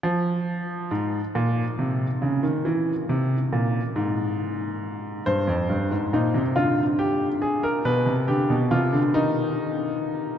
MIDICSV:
0, 0, Header, 1, 2, 480
1, 0, Start_track
1, 0, Tempo, 872093
1, 20, Time_signature, 6, 3, 24, 8
1, 2900, Tempo, 862069
1, 5747, End_track
2, 0, Start_track
2, 0, Title_t, "Grand piano"
2, 0, Program_c, 0, 0
2, 18, Note_on_c, 0, 53, 76
2, 490, Note_off_c, 0, 53, 0
2, 501, Note_on_c, 0, 44, 66
2, 651, Note_off_c, 0, 44, 0
2, 744, Note_on_c, 0, 46, 69
2, 893, Note_off_c, 0, 46, 0
2, 983, Note_on_c, 0, 48, 60
2, 1132, Note_off_c, 0, 48, 0
2, 1221, Note_on_c, 0, 49, 61
2, 1337, Note_on_c, 0, 51, 67
2, 1338, Note_off_c, 0, 49, 0
2, 1457, Note_off_c, 0, 51, 0
2, 1459, Note_on_c, 0, 52, 65
2, 1609, Note_off_c, 0, 52, 0
2, 1702, Note_on_c, 0, 48, 68
2, 1850, Note_off_c, 0, 48, 0
2, 1941, Note_on_c, 0, 46, 61
2, 2089, Note_off_c, 0, 46, 0
2, 2178, Note_on_c, 0, 44, 71
2, 2876, Note_off_c, 0, 44, 0
2, 2896, Note_on_c, 0, 72, 81
2, 2897, Note_on_c, 0, 43, 56
2, 3013, Note_on_c, 0, 41, 57
2, 3015, Note_off_c, 0, 43, 0
2, 3133, Note_off_c, 0, 41, 0
2, 3136, Note_on_c, 0, 43, 58
2, 3254, Note_off_c, 0, 43, 0
2, 3257, Note_on_c, 0, 44, 55
2, 3363, Note_off_c, 0, 72, 0
2, 3374, Note_off_c, 0, 44, 0
2, 3381, Note_on_c, 0, 46, 58
2, 3382, Note_on_c, 0, 63, 67
2, 3496, Note_off_c, 0, 46, 0
2, 3498, Note_on_c, 0, 48, 60
2, 3529, Note_off_c, 0, 63, 0
2, 3614, Note_off_c, 0, 48, 0
2, 3617, Note_on_c, 0, 65, 75
2, 3618, Note_on_c, 0, 50, 62
2, 3766, Note_off_c, 0, 65, 0
2, 3857, Note_on_c, 0, 67, 71
2, 4006, Note_off_c, 0, 67, 0
2, 4096, Note_on_c, 0, 68, 65
2, 4214, Note_off_c, 0, 68, 0
2, 4216, Note_on_c, 0, 70, 70
2, 4317, Note_off_c, 0, 50, 0
2, 4334, Note_off_c, 0, 70, 0
2, 4337, Note_on_c, 0, 47, 59
2, 4338, Note_on_c, 0, 71, 79
2, 4454, Note_off_c, 0, 47, 0
2, 4454, Note_on_c, 0, 48, 59
2, 4487, Note_off_c, 0, 71, 0
2, 4573, Note_off_c, 0, 48, 0
2, 4576, Note_on_c, 0, 67, 71
2, 4577, Note_on_c, 0, 50, 62
2, 4694, Note_off_c, 0, 50, 0
2, 4698, Note_on_c, 0, 47, 59
2, 4726, Note_off_c, 0, 67, 0
2, 4815, Note_off_c, 0, 47, 0
2, 4816, Note_on_c, 0, 65, 75
2, 4818, Note_on_c, 0, 48, 61
2, 4934, Note_off_c, 0, 48, 0
2, 4936, Note_on_c, 0, 50, 68
2, 4966, Note_off_c, 0, 65, 0
2, 5053, Note_off_c, 0, 50, 0
2, 5056, Note_on_c, 0, 63, 82
2, 5057, Note_on_c, 0, 51, 72
2, 5747, Note_off_c, 0, 51, 0
2, 5747, Note_off_c, 0, 63, 0
2, 5747, End_track
0, 0, End_of_file